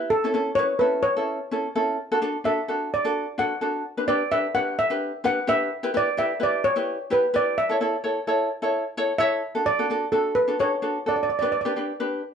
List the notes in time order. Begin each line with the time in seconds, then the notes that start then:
0.10 A4
0.24 C#4 E4 A4
0.34 C#4 E4 A4
0.55 C#4 E4 B4 C#5
0.79 C#4 E4 A4 B4
1.03 C#5
1.17 C#4 E4 A4
1.51 C#4 E4 A4
1.75 C#4 E4 A4
2.12 D4 F#4 A4
2.22 D4 F#4 A4
2.44 D4 F#4 A4 E5
2.68 D4 F#4 A4
2.94 D5
3.04 D4 F#4 A4
3.38 D4 F#4 A4 F#5
3.61 D4 F#4 A4
3.97 D4 G4 B4
4.08 D4 G4 B4 D5
4.31 D4 G4 B4 E5
4.55 D4 G4 B4 F#5
4.79 E5
4.90 D4 G4 B4
5.24 D4 G4 B4 F#5
5.47 D4 G4 B4 E5
5.83 E4 G4 B4
5.94 E4 G4 B4 D5
6.17 E4 G4 B4 E5
6.40 E4 G4 B4 D5
6.64 C#5
6.76 E4 G4 B4
7.10 E4 G4 B4
7.34 E4 G4 B4 D5
7.58 E5
7.69 E4 A4 C#5
7.81 E4 A4 C#5
8.04 E4 A4 C#5
8.27 E4 A4 C#5
8.62 E4 A4 C#5
8.97 E4 A4 C#5
9.18 E4 A4 C#5 E5
9.55 D4 F#4 A4
9.66 D5
9.79 D4 F#4 A4
9.90 D4 F#4 A4
10.12 D4 F#4 A4
10.35 B4
10.48 D4 F#4 A4
10.59 D4 F#4 A4 C#5
10.82 D4 F#4 A4
11.06 D4 F#4 A4 D5
11.16 D5
11.23 D5
11.30 D5
11.39 D4 G4 B4 D5
11.45 D5
11.52 D5
11.61 G4 D5
11.66 D4 B4
11.76 D4 G4 B4
12.00 D4 G4 B4